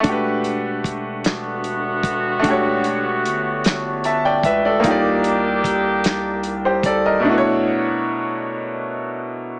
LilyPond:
<<
  \new Staff \with { instrumentName = "Grand piano" } { \time 6/8 \key e \dorian \tempo 4. = 50 << { r2. | r2 <e'' a''>16 <d'' g''>16 <b' e''>16 <a' d''>16~ | <a' d''>16 r2 <g' c''>16 <a' d''>16 <bes' ees''>16~ | <bes' ees''>16 r2 r8. | } \\ { <a d' fis' g' b'>2. | <a d' fis' g' cis''>2. | <bes ees' f' g' d''>2. | <b, a d' e' fis' b' cis''>2. | } >> }
  \new Staff \with { instrumentName = "Horn section" } { \time 6/8 \key e \dorian r4. <d b fis'>4.~ | <d b fis'>2~ <d b fis'>8 r8 | <ees d' g'>2~ <ees d' g'>8 r8 | r2. | }
  \new Staff \with { instrumentName = "Analog synth bass" } { \clef bass \time 6/8 \key e \dorian e,,2. | e,,4 g,,4. cis,8 | c,2. | r2. | }
  \new DrumStaff \with { instrumentName = "Drums" } \drummode { \time 6/8 <hh bd>8 hh8 <hh bd>8 <hh sn>8 hh8 <hh bd>8 | <hh bd>8 hh8 hh8 <hh sn>8 hh8 <hh bd>8 | <hh bd>8 hh8 <hh bd>8 <hh sn>8 hh8 <hh bd>8 | r4. r4. | }
>>